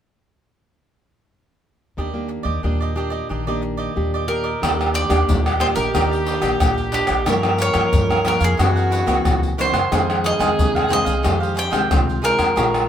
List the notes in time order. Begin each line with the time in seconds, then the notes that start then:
1.97 D#2 D#3 A#3 D4 G4 D5 D#5
2.14 A#3 D4 G4
2.28 muted cavaquinho stroke
2.43 D#2 G4 D5 D#5
2.63 D#2 A#2 A#3 D4 G4 D5 D#5
2.80 G4 D5 D#5
2.95 A#3 D4 G4 D5 D#5
3.10 G4 D5 D#5
3.29 A#1 D#3 D4 G4 D5 D#5
3.47 A#3 D4 G4 D5 D#5
3.62 muted cavaquinho stroke
3.77 G4 D5 D#5
3.96 D#2 A#2 A#3 D4 G4
4.14 G4 D5 D#5
4.27 A#3 D4 G4 A#4 D5 D#5
4.44 G4 D5 D#5
4.61 D#2 D#3 A#3 G4 D5 D#5, pandeiro, tamborim, maracas, surdo
4.81 pandeiro, tamborim, maracas
4.94 D4 G4 D5 D#5, pandeiro, maracas
5.09 D#2 A#3 D4 G4 D5 D#5, pandeiro, tamborim, maracas, surdo
5.28 D#2 A#2, pandeiro, maracas, surdo
5.46 G4 D5 D#5, pandeiro, tamborim, maracas
5.60 A#3 D4 G4 C5 D5 D#5, pandeiro, tamborim, maracas
5.75 A#1 G4 A#4 D5 D#5, pandeiro, maracas, surdo
5.94 D#2 D#3 A#3 D4 G4 D5 D#5, pandeiro, tamborim, maracas, surdo
6.11 G4 D5 D#5, pandeiro, maracas
6.25 D4 G4 D5 D#5, pandeiro
6.42 A#1 A#3 D4 G4 D5 D#5, pandeiro, tamborim, maracas, surdo
6.60 A#1 A#2, pandeiro, tamborim, maracas, surdo
6.78 pandeiro, maracas
6.92 A#3 D4 G4 D5 D#5, pandeiro
7.07 A#1 G4 D5 D#5, pandeiro, tamborim, maracas, surdo
7.26 G2 F3 A#3 C#4 G4 A#4 C#5 F5, pandeiro, tamborim, maracas, surdo
7.43 pandeiro, tamborim, maracas
7.58 G4 A#4 C#5 F5, pandeiro, maracas
7.73 G2 F3 A#3 C#4 G4 A#4 C#5 F5, pandeiro, tamborim, maracas, surdo
7.93 G2, pandeiro, maracas, surdo
8.10 A#4 C#5 F5, pandeiro, tamborim, maracas
8.24 F3 A#3 C#4 G4 A#4 C#5 F5, pandeiro, tamborim, surdo
8.39 F2 A#4 C#5 F5, pandeiro, maracas, surdo
8.44 G#4
8.57 F#2 E3 A#3 C4 E4 F#4 A#4 C#5 F#5, pandeiro, tamborim, maracas, surdo
8.76 A#4 C#5 F#5, pandeiro, maracas
8.91 E4 A#4 C#5 F#5, pandeiro, maracas
9.06 C#2 E3 A#3 C4 E4 A#4 C#5 F#5, pandeiro, tamborim, maracas, surdo
9.24 C#2 C#3, pandeiro, tamborim, maracas, surdo
9.43 pandeiro, maracas
9.57 E3 A#3 C4 E4 A#4 C5 C#5 F#5, pandeiro, maracas
9.73 F#2 A#4 C#5 F#5, pandeiro, tamborim, maracas, surdo
9.91 F2 D#3 G#3 C4 D#4 G#4 C5 F5, pandeiro, tamborim, maracas, surdo
10.10 pandeiro, tamborim, maracas
10.24 D#4 G#4 C5 D#5 F5, pandeiro
10.39 F2 D#3 G#3 C4 D#4 G#4 C5 F5, pandeiro, tamborim, maracas, surdo
10.59 F2 C3, pandeiro, maracas, surdo
10.75 G#4 C5 F5, pandeiro, tamborim, maracas
10.88 D#3 G#3 C4 D#4 G#4 C5 F5, pandeiro, tamborim, maracas
10.93 D#5
11.05 C2 G#4 C5 F5, pandeiro, maracas, surdo
11.23 F2 D#3 G#3 C4 D#4 G4 G#4 C5 F5, pandeiro, tamborim, maracas, surdo
11.40 G#4 C5 F5, pandeiro, maracas
11.55 D#4 G#4 C5 F5, pandeiro, maracas
11.59 G5
11.70 C2 D#3 G#3 C4 D#4 G#4 C5 F5, pandeiro, tamborim, maracas, surdo
11.90 C2 C3 F4, pandeiro, tamborim, maracas, surdo
12.09 pandeiro, maracas
12.22 D#3 G#3 C4 D#4 G#4 A#4 C5 F5, pandeiro, maracas
12.37 F2 G#4 C5 F5, pandeiro, tamborim, maracas, surdo
12.56 A#1 A#2 G#3 C#4 F4 G#4 C#5 F5 A#5, pandeiro, tamborim, maracas, surdo
12.74 pandeiro, tamborim, maracas